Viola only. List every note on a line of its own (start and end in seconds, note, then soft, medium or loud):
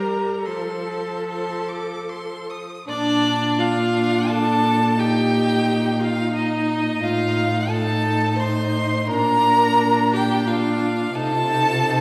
0.00 0.48 G3 medium
0.47 2.67 F3 medium
2.89 3.56 D4 medium
3.59 4.95 D4 medium
4.98 6.30 D#4 medium
6.33 7.00 D#4 medium
7.02 7.68 D#4 medium
7.70 8.37 D#4 medium
8.38 9.07 D#4 medium
9.09 10.45 D4 medium
10.47 11.13 D4 medium
11.14 11.34 D#4 medium
11.32 11.51 F4 medium
11.49 11.69 D#4 medium
11.68 11.86 F4 medium
11.86 12.01 D#4 medium